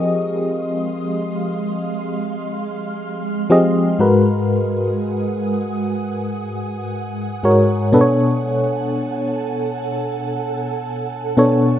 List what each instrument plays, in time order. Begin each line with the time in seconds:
Already playing: fm electric piano F3 C4 G4 G#4 D#5, ambient pad G#3 F5 C6 D#6
1.53 ambient pad F6
3.50 fm electric piano F3 C4 G4 G#4 D#5
3.99 fm electric piano G#2 G#3 F#4 A#4 B4, ambient pad F#5 G#5 D#6
7.43 fm electric piano G#2 G#3 F#4 A#4 C#5
7.92 fm electric piano B2 B3 D4 A4 B4, ambient pad A4 A5
8.01 fm electric piano C#5
11.37 fm electric piano B2 B3 D4 A4 C#5